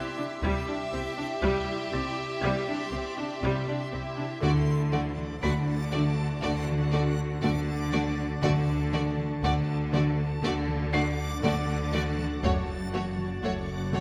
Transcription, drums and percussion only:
0.43 taiko
1.43 taiko
4.43 taiko
4.93 taiko mid
5.17 taiko mid
5.43 taiko
5.93 taiko mid
6.67 taiko mid
7.93 taiko mid
8.18 taiko mid
8.43 taiko
8.93 taiko mid
9.17 taiko mid
9.43 taiko
9.93 taiko mid
10.68 taiko mid
11.93 taiko mid
12.18 taiko mid
12.44 taiko
12.93 taiko mid
13.18 taiko mid
13.43 taiko
13.92 taiko mid

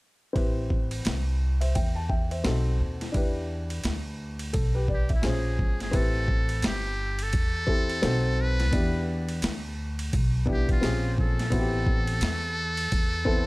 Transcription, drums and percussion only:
0.36 kick, ride
0.70 kick
0.91 ride
1.05 snare, hi-hat pedal, ride
1.61 ride
1.75 kick, ride
2.10 kick
2.31 ride
2.45 snare, hi-hat pedal, ride
3.01 snare, ride
3.14 kick, ride
3.70 ride
3.84 snare, hi-hat pedal, ride
4.39 ride
4.54 kick, ride
4.88 kick
5.09 kick, ride
5.23 snare, hi-hat pedal, ride
5.59 kick
5.80 snare, ride
5.93 kick, ride
6.28 kick
6.49 ride
6.62 snare, hi-hat pedal, ride
7.19 ride
7.33 kick, ride
7.68 kick
7.90 ride
8.03 snare, hi-hat pedal, ride
8.60 snare, ride
8.73 kick, ride
9.29 ride
9.42 snare, hi-hat pedal, ride
9.99 ride
10.13 kick, ride
10.47 kick
10.69 kick, ride
10.83 snare, hi-hat pedal, ride
11.18 kick
11.39 snare, ride
11.52 kick, ride
11.87 kick
12.07 ride
12.21 snare, hi-hat pedal, ride
12.77 ride
12.92 kick, ride
13.26 kick

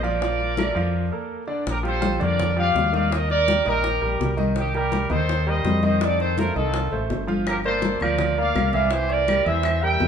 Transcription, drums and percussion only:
0.04 high bongo, high conga
0.22 high bongo, high conga
0.40 high bongo, high conga
0.57 high bongo, high conga, claves
0.76 high bongo, high conga
1.67 high bongo, high conga
1.85 high bongo, high conga
2.02 high bongo, high conga
2.21 high bongo, high conga, low conga
2.40 high bongo, high conga, low conga
2.57 high conga
2.76 high bongo, low bongo, high conga
2.94 high bongo, high conga
3.12 high bongo
3.30 high bongo, high conga
3.48 high bongo, high conga
3.66 high bongo, high conga
3.84 high bongo, high conga
4.02 high conga
4.20 high bongo, low bongo, high conga
4.38 high bongo, high conga
4.56 high bongo
4.74 high bongo
4.92 high bongo, high conga
5.10 high bongo, high conga, low conga
5.28 high bongo, high conga
5.47 high conga
5.65 high bongo, low bongo, high conga
5.83 high bongo, high conga
6.01 high bongo
6.19 high bongo, high conga
6.38 high bongo, high conga
6.56 high bongo, high conga
6.74 high bongo, high conga
6.93 high conga
7.10 high bongo, low bongo, high conga
7.28 high bongo, high conga
7.47 high bongo, high conga, claves
7.64 high bongo, high conga
7.82 high bongo, high conga
8.00 high bongo, high conga, low conga, claves
8.19 high bongo, high conga, low conga
8.37 high conga
8.55 high bongo, low bongo, high conga, claves
8.73 high bongo, high conga
8.91 high bongo
9.10 high bongo, high conga
9.28 high bongo, high conga, claves
9.46 high bongo, high conga
9.63 high bongo, high conga, claves
9.83 high conga
10.00 high bongo, low bongo, high conga

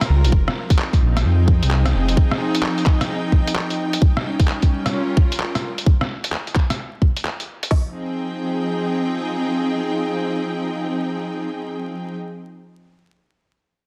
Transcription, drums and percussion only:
0.01 cross-stick, closed hi-hat
0.24 closed hi-hat
0.32 kick
0.48 cross-stick
0.70 kick, closed hi-hat
0.79 clap
0.93 kick, closed hi-hat
1.17 cross-stick, closed hi-hat
1.48 kick
1.63 closed hi-hat
1.71 clap
1.86 cross-stick, closed hi-hat
2.08 closed hi-hat
2.17 kick
2.31 cross-stick
2.55 closed hi-hat
2.63 clap
2.78 closed hi-hat
2.86 kick, clap
3.01 cross-stick, closed hi-hat
3.32 kick
3.47 closed hi-hat
3.56 clap
3.70 closed hi-hat
3.93 closed hi-hat
4.02 kick
4.17 cross-stick
4.40 kick, closed hi-hat
4.48 clap
4.62 kick, closed hi-hat
4.86 cross-stick, closed hi-hat
5.17 kick
5.32 closed hi-hat
5.40 clap
5.55 cross-stick, closed hi-hat
5.78 closed hi-hat
5.86 kick
6.01 cross-stick
6.24 closed hi-hat
6.32 clap
6.47 closed hi-hat
6.56 kick, clap
6.70 cross-stick, closed hi-hat
7.02 kick
7.17 closed hi-hat
7.25 clap
7.40 closed hi-hat
7.63 closed hi-hat
7.71 kick, snare, open hi-hat

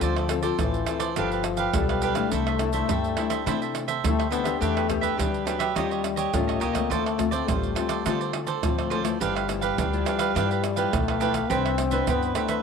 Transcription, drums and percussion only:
0.01 pandeiro, maracas, surdo
0.16 pandeiro, tamborim, maracas
0.29 pandeiro, tamborim, maracas
0.43 pandeiro, maracas
0.59 pandeiro, tamborim, maracas, surdo
0.74 pandeiro, maracas
0.87 pandeiro, tamborim, maracas
1.00 pandeiro, tamborim, maracas
1.16 pandeiro, tamborim, maracas, surdo
1.32 pandeiro, maracas
1.44 pandeiro, tamborim, maracas
1.57 pandeiro, maracas
1.74 pandeiro, tamborim, maracas, surdo
1.89 pandeiro, tamborim, maracas
2.02 pandeiro, maracas
2.15 pandeiro, tamborim, maracas
2.31 pandeiro, maracas, surdo
2.47 pandeiro, tamborim, maracas
2.59 pandeiro, tamborim, maracas
2.73 pandeiro, maracas
2.89 pandeiro, tamborim, maracas, surdo
3.04 pandeiro, maracas
3.17 pandeiro, tamborim
3.30 pandeiro, tamborim, maracas
3.47 pandeiro, tamborim, maracas, surdo
3.62 pandeiro, maracas
3.75 pandeiro, tamborim, maracas
3.88 pandeiro, maracas
4.04 pandeiro, tamborim, maracas, surdo
4.20 pandeiro, tamborim, maracas
4.32 pandeiro, maracas
4.45 pandeiro, tamborim, maracas
4.62 pandeiro, maracas, surdo
4.77 pandeiro, tamborim, maracas
4.90 pandeiro, tamborim, maracas, surdo
5.03 pandeiro, maracas
5.19 pandeiro, tamborim, maracas, surdo
5.34 pandeiro, maracas
5.47 pandeiro, tamborim, maracas
5.60 pandeiro, tamborim, maracas
5.76 pandeiro, tamborim, maracas, surdo
5.91 pandeiro, maracas
6.04 pandeiro, tamborim, maracas
6.17 pandeiro, maracas
6.34 pandeiro, tamborim, maracas, surdo
6.49 pandeiro, tamborim, maracas
6.61 pandeiro, maracas
6.75 pandeiro, tamborim, maracas
6.91 pandeiro, maracas, surdo
7.06 pandeiro, tamborim, maracas
7.19 pandeiro, tamborim, maracas, surdo
7.32 pandeiro, maracas
7.48 pandeiro, tamborim, maracas, surdo
7.63 pandeiro, maracas
7.76 pandeiro, tamborim, maracas
7.89 pandeiro, tamborim, maracas
8.06 pandeiro, tamborim, maracas, surdo
8.21 pandeiro, maracas
8.33 pandeiro, tamborim
8.47 pandeiro, maracas
8.63 pandeiro, tamborim, maracas, surdo
8.79 pandeiro, tamborim, maracas
8.91 pandeiro
9.05 pandeiro, tamborim, maracas
9.21 pandeiro, maracas, surdo
9.36 pandeiro, tamborim, maracas
9.49 pandeiro, tamborim, maracas
9.62 pandeiro, maracas
9.78 pandeiro, tamborim, maracas, surdo
9.93 pandeiro, maracas
10.06 pandeiro, tamborim, maracas
10.19 pandeiro, tamborim, maracas
10.36 pandeiro, tamborim, maracas, surdo
10.51 pandeiro, maracas
10.64 pandeiro, tamborim, maracas
10.77 pandeiro, maracas
10.93 pandeiro, tamborim, maracas, surdo
11.08 pandeiro, tamborim, maracas
11.21 pandeiro, maracas
11.34 pandeiro, tamborim, maracas
11.50 pandeiro, maracas, surdo
11.66 pandeiro, tamborim, maracas
11.78 pandeiro, tamborim, maracas
11.91 pandeiro, maracas
12.07 pandeiro, tamborim, maracas, surdo
12.23 pandeiro, maracas
12.35 pandeiro, tamborim, maracas
12.48 pandeiro, tamborim, maracas

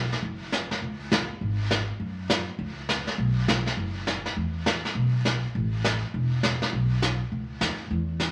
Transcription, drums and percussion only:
0.12 snare
0.23 brush sweep
0.52 snare, hi-hat pedal
0.71 snare
0.82 brush sweep
1.12 snare, hi-hat pedal
1.41 brush sweep
1.71 snare, hi-hat pedal
2.00 brush sweep
2.30 snare, hi-hat pedal
2.59 brush sweep
2.89 snare, hi-hat pedal
3.07 snare
3.19 brush sweep
3.48 snare, hi-hat pedal
3.66 snare
3.77 brush sweep
4.07 snare, hi-hat pedal
4.26 snare
4.37 brush sweep
4.66 snare, hi-hat pedal
4.85 snare
4.96 brush sweep
5.25 snare, hi-hat pedal
5.55 brush sweep
5.84 snare, hi-hat pedal
6.14 brush sweep
6.43 snare, hi-hat pedal
6.62 snare
6.73 brush sweep
7.02 snare, hi-hat pedal
7.31 brush sweep
7.61 snare, hi-hat pedal
7.91 brush sweep
8.20 snare, hi-hat pedal

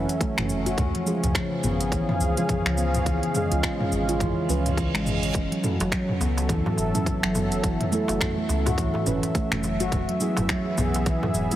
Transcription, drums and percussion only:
0.09 closed hi-hat, shaker
0.21 kick, closed hi-hat, shaker
0.38 finger snap, mid tom
0.49 shaker
0.66 closed hi-hat, shaker
0.78 kick, closed hi-hat, mid tom, shaker
0.95 closed hi-hat
1.07 shaker
1.24 closed hi-hat, mid tom, shaker
1.35 finger snap, kick, closed hi-hat, shaker
1.64 mid tom, shaker
1.81 closed hi-hat, shaker
1.92 kick, closed hi-hat, shaker
2.09 mid tom
2.21 shaker
2.37 closed hi-hat, shaker
2.49 kick, closed hi-hat, mid tom, shaker
2.66 finger snap
2.78 shaker
2.94 closed hi-hat, mid tom, shaker
3.06 kick, closed hi-hat, shaker
3.23 closed hi-hat
3.35 mid tom, shaker
3.52 closed hi-hat, shaker
3.63 finger snap, kick, closed hi-hat, shaker
3.80 mid tom
3.92 shaker
4.09 closed hi-hat, shaker
4.20 kick, closed hi-hat, mid tom, shaker
4.49 shaker
4.66 closed hi-hat, mid tom, shaker
4.77 kick, closed hi-hat, shaker
4.95 finger snap, closed hi-hat
5.06 mid tom, shaker
5.23 closed hi-hat, shaker
5.35 kick, closed hi-hat, shaker
5.52 closed hi-hat
5.64 mid tom, shaker
5.80 closed hi-hat, darbuka tek, shaker
5.92 finger snap, kick, closed hi-hat, shaker
6.09 mid tom
6.21 darbuka tek, shaker
6.38 closed hi-hat, darbuka tek, shaker
6.49 kick, closed hi-hat, mid tom, shaker
6.66 darbuka tek, darbuka dum
6.78 darbuka tek, shaker
6.95 closed hi-hat, mid tom, shaker
7.06 kick, closed hi-hat, shaker
7.23 finger snap
7.35 mid tom, darbuka ka, shaker
7.52 closed hi-hat, shaker
7.64 kick, closed hi-hat, shaker
7.81 closed hi-hat, mid tom
7.93 shaker
8.08 closed hi-hat, darbuka tek, shaker
8.21 finger snap, kick, closed hi-hat, mid tom, shaker
8.49 darbuka tek, shaker
8.66 closed hi-hat, mid tom, darbuka ka, darbuka tek, darbuka dum, shaker
8.78 kick, closed hi-hat, shaker
8.94 darbuka tek, darbuka dum
9.06 mid tom, shaker
9.23 closed hi-hat, darbuka ka, shaker
9.35 kick, closed hi-hat, shaker
9.52 finger snap, mid tom
9.63 darbuka ka, shaker
9.80 closed hi-hat, darbuka ka, shaker
9.92 kick, closed hi-hat, mid tom, shaker
10.09 closed hi-hat
10.20 shaker
10.37 closed hi-hat, mid tom, darbuka tek, shaker
10.49 finger snap, kick, closed hi-hat, shaker
10.78 mid tom, darbuka tek, shaker
10.94 closed hi-hat, darbuka tek, shaker
11.06 kick, closed hi-hat, shaker
11.23 mid tom, darbuka tek, darbuka dum
11.34 darbuka tek, shaker
11.51 closed hi-hat, shaker

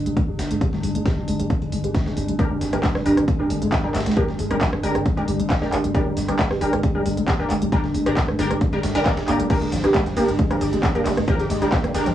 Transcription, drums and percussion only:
0.06 closed hi-hat
0.17 kick, closed hi-hat
0.39 snare, closed hi-hat, open hi-hat
0.51 closed hi-hat
0.61 kick, closed hi-hat
0.73 snare
0.83 closed hi-hat, open hi-hat
0.95 closed hi-hat
1.06 kick, snare, closed hi-hat
1.28 closed hi-hat, open hi-hat
1.40 closed hi-hat
1.50 kick, closed hi-hat
1.62 closed hi-hat
1.72 closed hi-hat, open hi-hat
1.84 closed hi-hat
1.94 kick, snare, closed hi-hat
2.06 snare
2.17 closed hi-hat, open hi-hat
2.28 closed hi-hat
2.39 kick, closed hi-hat
2.61 snare, closed hi-hat, open hi-hat
2.73 cross-stick, closed hi-hat
2.83 kick, snare, clap, closed hi-hat
2.95 cross-stick, snare
3.06 closed hi-hat, open hi-hat
3.17 cross-stick, closed hi-hat
3.28 kick, closed hi-hat
3.50 closed hi-hat, open hi-hat
3.62 closed hi-hat
3.72 kick, snare, clap, closed hi-hat
3.95 snare, clap, closed hi-hat, open hi-hat
4.00 snare, closed hi-hat
4.06 snare, closed hi-hat
4.11 snare, closed hi-hat
4.17 kick, closed hi-hat
4.28 snare
4.39 closed hi-hat, open hi-hat
4.51 cross-stick, closed hi-hat
4.61 kick, snare, clap, closed hi-hat
4.73 cross-stick
4.83 closed hi-hat, open hi-hat
4.95 cross-stick, closed hi-hat
5.06 kick, closed hi-hat
5.17 closed hi-hat
5.28 closed hi-hat, open hi-hat
5.40 closed hi-hat
5.50 kick, snare, clap, closed hi-hat
5.62 snare
5.72 clap, closed hi-hat, open hi-hat
5.84 closed hi-hat
5.95 kick, closed hi-hat
6.17 snare, closed hi-hat, open hi-hat
6.28 cross-stick, closed hi-hat
6.39 kick, snare, clap, closed hi-hat
6.51 cross-stick, snare
6.61 closed hi-hat, open hi-hat
6.73 cross-stick, closed hi-hat
6.83 kick, closed hi-hat
7.06 closed hi-hat, open hi-hat
7.17 closed hi-hat
7.28 kick, snare, clap, closed hi-hat
7.50 clap, closed hi-hat, open hi-hat
7.62 closed hi-hat
7.72 kick, closed hi-hat
7.84 snare
7.94 closed hi-hat, open hi-hat
8.06 cross-stick, closed hi-hat
8.17 kick, snare, clap, closed hi-hat
8.28 cross-stick
8.39 closed hi-hat, open hi-hat
8.51 cross-stick, closed hi-hat
8.61 kick, closed hi-hat
8.73 closed hi-hat
8.83 snare, closed hi-hat, open hi-hat
8.95 snare, closed hi-hat
9.06 kick, snare, clap, closed hi-hat
9.17 snare, closed hi-hat
9.28 clap, closed hi-hat, open hi-hat
9.40 closed hi-hat
9.50 kick, closed hi-hat, crash
9.62 closed hi-hat
9.72 snare, closed hi-hat, open hi-hat, ride
9.84 cross-stick, closed hi-hat
9.94 kick, snare, clap, closed hi-hat
10.06 snare, closed hi-hat
10.17 closed hi-hat, open hi-hat, ride
10.28 closed hi-hat
10.39 kick, closed hi-hat
10.51 cross-stick, closed hi-hat
10.61 closed hi-hat, open hi-hat, ride
10.73 closed hi-hat
10.83 kick, snare, clap, closed hi-hat
10.95 closed hi-hat
11.06 clap, closed hi-hat, open hi-hat, ride
11.17 cross-stick, closed hi-hat
11.28 kick, closed hi-hat
11.39 snare, closed hi-hat
11.50 closed hi-hat, open hi-hat, ride
11.62 closed hi-hat
11.72 kick, snare, clap, closed hi-hat
11.84 cross-stick, closed hi-hat
11.94 closed hi-hat, open hi-hat, ride
12.06 closed hi-hat

